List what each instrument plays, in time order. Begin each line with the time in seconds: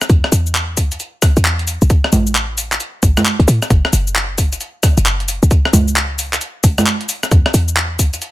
0.01 cross-stick, closed hi-hat, shaker
0.09 808-style bass E2, kick, closed hi-hat, shaker
0.24 cross-stick
0.32 808-style bass E2, open hi-hat, shaker
0.47 shaker
0.55 clap, closed hi-hat, shaker
0.77 kick, open hi-hat, shaker
0.92 closed hi-hat, shaker
1.00 closed hi-hat, shaker
1.22 kick, cross-stick, open hi-hat, shaker
1.37 808-style bass E2, closed hi-hat, shaker
1.45 clap, shaker
1.59 closed hi-hat
1.67 open hi-hat, shaker
1.82 808-style bass B1, closed hi-hat, shaker
1.90 kick, closed hi-hat, shaker
2.04 cross-stick
2.12 808-style bass A1, open hi-hat, high conga, shaker
2.27 shaker
2.35 clap, closed hi-hat, shaker
2.58 open hi-hat, shaker
2.72 clap, closed hi-hat, shaker
2.80 closed hi-hat, shaker
3.03 808-style bass A1, kick, open hi-hat, shaker
3.17 cross-stick, closed hi-hat, high conga, shaker
3.25 clap, shaker
3.39 808-style bass C#2, closed hi-hat
3.48 808-style bass A2, open hi-hat, shaker
3.62 cross-stick, closed hi-hat, shaker
3.70 808-style bass F#1, kick, closed hi-hat, shaker
3.85 cross-stick
3.93 808-style bass F#1, open hi-hat, shaker
4.07 shaker
4.16 clap, closed hi-hat, shaker
4.38 kick, open hi-hat, shaker
4.53 closed hi-hat, shaker
4.61 closed hi-hat, shaker
4.83 kick, cross-stick, open hi-hat, shaker
4.97 808-style bass F#1, closed hi-hat, shaker
5.06 clap, shaker
5.20 closed hi-hat
5.28 open hi-hat, shaker
5.43 808-style bass C#2, closed hi-hat, shaker
5.51 kick, closed hi-hat, shaker
5.65 cross-stick
5.73 808-style bass C#2, open hi-hat, high conga, shaker
5.88 shaker
5.96 clap, closed hi-hat, shaker
6.19 open hi-hat, shaker
6.33 clap, closed hi-hat, shaker
6.41 closed hi-hat, shaker
6.64 808-style bass C#2, kick, open hi-hat, shaker
6.78 cross-stick, closed hi-hat, high conga, shaker
6.86 clap, shaker
7.01 closed hi-hat
7.09 open hi-hat, shaker
7.23 cross-stick, closed hi-hat, shaker
7.31 808-style bass E2, kick, closed hi-hat, shaker
7.46 cross-stick
7.54 808-style bass E2, open hi-hat, shaker
7.68 shaker
7.77 clap, closed hi-hat, shaker
7.99 kick, open hi-hat, shaker
8.13 closed hi-hat, shaker
8.22 closed hi-hat, shaker